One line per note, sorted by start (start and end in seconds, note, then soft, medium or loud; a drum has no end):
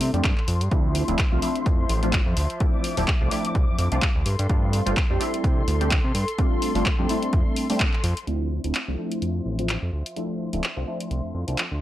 0.00 0.11 C3 medium
0.00 0.11 G3 medium
0.00 0.11 A3 medium
0.00 0.11 C4 medium
0.00 0.11 D4 medium
0.00 0.11 E4 medium
0.00 0.67 A4 medium
0.00 0.68 C6 medium
0.00 open hi-hat loud
0.14 0.22 F2 medium
0.14 0.29 G3 medium
0.14 0.29 A3 medium
0.14 0.29 C4 medium
0.14 0.29 D4 medium
0.14 0.29 G4 loud
0.14 closed hi-hat medium
0.24 0.34 G2 loud
0.24 kick loud
0.24 clap loud
0.24 closed hi-hat soft
0.38 clap soft
0.48 0.62 F2 medium
0.48 open hi-hat loud
0.61 0.69 G2 medium
0.61 closed hi-hat medium
0.71 1.03 D2 loud
0.71 1.05 F3 medium
0.71 4.22 F3 medium
0.71 1.05 A3 medium
0.71 1.05 C4 medium
0.71 1.05 D4 medium
0.71 1.05 E4 medium
0.71 4.22 E5 medium
0.71 2.59 C6 medium
0.71 kick loud
0.71 closed hi-hat soft
0.95 open hi-hat loud
1.08 1.16 D1 loud
1.08 1.17 F3 medium
1.08 1.17 A3 medium
1.08 1.17 C4 medium
1.08 1.17 D4 medium
1.08 1.17 E4 loud
1.08 closed hi-hat medium
1.19 kick loud
1.19 clap loud
1.19 closed hi-hat soft
1.32 1.40 C2 medium
1.32 1.40 F3 medium
1.32 1.40 A3 medium
1.32 1.40 C4 medium
1.32 1.40 D4 medium
1.32 1.40 F4 medium
1.42 1.99 F3 medium
1.42 2.00 A3 medium
1.42 2.00 C4 medium
1.42 2.00 D4 medium
1.42 2.00 E4 medium
1.42 open hi-hat loud
1.56 closed hi-hat medium
1.66 1.85 F2 medium
1.66 kick loud
1.66 closed hi-hat soft
1.89 2.21 A1 medium
1.89 open hi-hat loud
2.03 2.18 F3 medium
2.03 2.18 A3 medium
2.03 2.18 C4 medium
2.03 2.18 D4 medium
2.03 2.18 F4 medium
2.03 closed hi-hat medium
2.13 kick loud
2.13 clap loud
2.13 closed hi-hat soft
2.26 2.34 F2 loud
2.37 2.47 D2 medium
2.37 open hi-hat loud
2.50 closed hi-hat medium
2.60 2.94 F3 medium
2.60 2.94 A3 medium
2.60 2.94 C4 medium
2.60 2.94 D4 medium
2.60 2.94 E4 medium
2.60 4.24 D6 medium
2.60 kick loud
2.60 closed hi-hat medium
2.84 open hi-hat loud
2.97 3.05 D1 loud
2.97 3.06 F3 medium
2.97 3.06 A3 medium
2.97 3.06 C4 medium
2.97 3.06 D4 medium
2.97 3.06 E4 loud
2.97 open hi-hat medium
3.08 kick loud
3.08 clap loud
3.21 3.29 C2 medium
3.21 3.29 F3 medium
3.21 3.29 A3 medium
3.21 3.29 C4 medium
3.21 3.29 D4 medium
3.21 3.29 F4 medium
3.31 3.88 F3 medium
3.31 3.89 A3 medium
3.31 3.89 C4 medium
3.31 3.89 D4 medium
3.31 3.89 E4 medium
3.31 open hi-hat loud
3.45 closed hi-hat medium
3.55 3.65 C2 loud
3.55 kick loud
3.55 closed hi-hat soft
3.68 3.77 F2 soft
3.79 3.89 F2 medium
3.79 open hi-hat loud
3.92 4.00 C2 loud
3.92 4.07 F3 medium
3.92 4.07 A3 medium
3.92 4.07 C4 medium
3.92 4.07 D4 medium
3.92 4.07 F4 medium
3.92 closed hi-hat medium
4.02 kick loud
4.02 clap loud
4.02 closed hi-hat medium
4.15 4.23 D2 medium
4.26 4.36 G2 medium
4.26 8.24 A4 medium
4.26 8.24 C6 medium
4.26 open hi-hat loud
4.39 4.47 G2 loud
4.39 closed hi-hat medium
4.49 4.81 G2 loud
4.49 4.83 G3 medium
4.49 4.83 A3 medium
4.49 4.83 C4 medium
4.49 4.83 D4 medium
4.49 4.84 F4 medium
4.49 kick loud
4.49 closed hi-hat medium
4.73 open hi-hat loud
4.86 4.94 G1 loud
4.86 4.95 G3 medium
4.86 4.95 A3 medium
4.86 4.95 C4 medium
4.86 4.95 D4 medium
4.86 4.95 F4 loud
4.86 closed hi-hat medium
4.97 kick loud
4.97 clap loud
4.97 closed hi-hat medium
5.10 5.18 F2 medium
5.10 5.18 G3 medium
5.10 5.18 A3 medium
5.10 5.18 C4 medium
5.10 5.18 D4 medium
5.10 5.18 G4 medium
5.20 5.77 G3 medium
5.20 5.78 A3 medium
5.20 5.78 C4 medium
5.20 5.78 D4 medium
5.20 5.78 E4 medium
5.20 open hi-hat loud
5.34 closed hi-hat medium
5.44 5.63 C3 medium
5.44 kick loud
5.44 closed hi-hat soft
5.67 6.00 D2 medium
5.67 open hi-hat loud
5.80 5.95 G3 medium
5.80 5.96 A3 medium
5.80 5.96 C4 medium
5.80 5.96 D4 medium
5.80 5.96 G4 medium
5.80 closed hi-hat medium
5.91 kick loud
5.91 clap loud
5.91 closed hi-hat medium
6.04 6.12 C3 loud
6.15 6.25 G2 medium
6.15 open hi-hat loud
6.28 closed hi-hat medium
6.38 6.72 G3 medium
6.38 6.72 A3 medium
6.38 6.72 C4 medium
6.38 6.72 D4 medium
6.38 6.72 F4 medium
6.38 kick loud
6.38 closed hi-hat medium
6.62 open hi-hat loud
6.75 6.83 G1 loud
6.75 6.84 G3 medium
6.75 6.84 A3 medium
6.75 6.84 C4 medium
6.75 6.84 D4 medium
6.75 6.84 F4 loud
6.75 open hi-hat medium
6.86 kick loud
6.86 clap loud
6.86 closed hi-hat medium
6.99 7.07 F2 medium
6.99 7.07 G3 medium
6.99 7.07 A3 medium
6.99 7.07 C4 medium
6.99 7.07 D4 medium
6.99 7.07 G4 medium
7.09 7.66 G3 medium
7.09 7.67 A3 medium
7.09 7.67 C4 medium
7.09 7.67 D4 medium
7.09 7.67 E4 medium
7.09 open hi-hat loud
7.23 closed hi-hat medium
7.33 7.43 F2 medium
7.33 kick loud
7.33 closed hi-hat medium
7.56 open hi-hat loud
7.70 7.85 G3 medium
7.70 7.85 A3 medium
7.70 7.85 C4 medium
7.70 7.85 D4 medium
7.70 7.85 G4 loud
7.70 open hi-hat medium
7.80 kick loud
7.80 clap loud
7.80 closed hi-hat medium
7.93 clap soft
8.04 8.14 F2 loud
8.04 open hi-hat loud
8.17 closed hi-hat medium
8.27 8.59 D2 medium
8.27 8.61 F3 medium
8.27 11.78 F3 medium
8.27 8.61 A3 medium
8.27 8.61 C4 medium
8.27 8.61 D4 medium
8.27 8.61 E4 medium
8.27 11.78 E5 medium
8.27 11.81 C6 medium
8.27 closed hi-hat soft
8.64 8.72 D1 loud
8.64 8.73 F3 medium
8.64 8.73 A3 medium
8.64 8.73 C4 medium
8.64 8.73 D4 medium
8.64 8.73 E4 medium
8.64 closed hi-hat medium
8.75 clap loud
8.75 closed hi-hat medium
8.88 8.96 C2 medium
8.88 8.96 F3 medium
8.88 8.96 A3 medium
8.88 8.96 C4 medium
8.88 8.96 D4 medium
8.88 8.96 F4 medium
8.98 9.55 F3 medium
8.98 9.55 A3 medium
8.98 9.56 C4 medium
8.98 9.56 D4 medium
8.98 9.56 E4 medium
9.12 closed hi-hat medium
9.22 9.41 F2 medium
9.22 closed hi-hat soft
9.45 9.77 A1 medium
9.59 9.74 F3 medium
9.59 9.74 A3 medium
9.59 9.74 C4 medium
9.59 9.74 D4 medium
9.59 9.74 F4 medium
9.59 closed hi-hat medium
9.69 clap loud
9.69 closed hi-hat medium
9.82 9.90 F2 medium
9.93 10.03 D2 medium
10.06 closed hi-hat medium
10.16 10.50 F3 medium
10.16 10.50 A3 medium
10.16 10.50 C4 medium
10.16 10.50 D4 medium
10.16 10.50 E4 medium
10.16 closed hi-hat soft
10.53 10.61 D1 medium
10.53 10.62 F3 medium
10.53 10.62 A3 medium
10.53 10.62 C4 medium
10.53 10.62 D4 medium
10.53 10.62 E4 loud
10.53 closed hi-hat medium
10.64 clap loud
10.64 closed hi-hat soft
10.77 10.85 C2 medium
10.77 10.85 F3 medium
10.77 10.85 A3 medium
10.77 10.85 C4 medium
10.77 10.85 D4 medium
10.77 10.85 F4 medium
10.87 11.44 F3 medium
10.87 11.45 A3 medium
10.87 11.45 C4 medium
10.87 11.45 D4 medium
10.87 11.45 E4 medium
11.01 closed hi-hat medium
11.11 11.21 C2 medium
11.11 closed hi-hat soft
11.24 11.33 F2 soft
11.35 11.45 F2 medium
11.47 11.56 C2 medium
11.47 11.62 F3 medium
11.47 11.62 A3 medium
11.47 11.63 C4 medium
11.47 11.63 D4 medium
11.47 11.63 F4 medium
11.47 closed hi-hat medium
11.58 clap loud
11.58 closed hi-hat soft
11.72 11.80 D2 medium